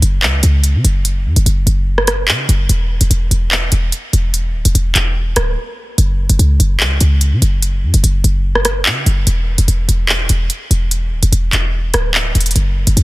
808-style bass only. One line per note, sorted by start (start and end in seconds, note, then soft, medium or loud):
0.02 0.24 F#1 loud
0.23 0.42 C#2 loud
0.43 0.76 C#2 loud
0.75 0.84 C#3 loud
0.84 1.27 F#1 loud
1.25 1.36 F#2 loud
1.36 1.45 F#1 loud
1.46 1.66 F#1 loud
1.67 2.30 F#1 loud
2.28 2.48 C#3 loud
2.49 2.69 F#1 loud
2.69 3.00 E1 loud
3.01 3.10 E1 loud
3.10 3.30 E1 loud
3.31 3.70 E1 loud
3.72 3.92 E1 loud
4.13 4.56 E1 loud
4.54 4.65 D1 loud
4.65 4.74 E1 loud
4.75 4.95 E1 loud
4.95 5.35 E1 loud
5.36 5.56 D1 loud
5.98 6.28 F#1 loud
6.30 6.39 F#1 loud
6.39 6.59 C#2 loud
6.60 6.82 F#1 loud
6.80 7.00 C#2 loud
7.01 7.34 C#2 loud
7.32 7.41 C#3 loud
7.42 7.84 F#1 loud
7.83 7.93 F#2 loud
7.94 8.03 F#1 loud
8.04 8.23 F#1 loud
8.24 8.87 F#1 loud
8.86 9.05 C#3 loud
9.06 9.26 F#1 loud
9.27 9.57 E1 loud
9.58 9.68 E1 loud
9.68 9.88 E1 loud
9.88 10.28 E1 loud
10.30 10.49 E1 loud
10.71 11.13 E1 loud
11.12 11.22 D1 loud
11.23 11.32 E1 loud
11.32 11.52 E1 loud
11.53 11.92 E1 loud
11.94 12.33 D1 loud
12.35 12.55 E1 loud
12.56 12.86 F#1 loud
12.87 12.96 F#1 loud
12.97 13.03 C#2 loud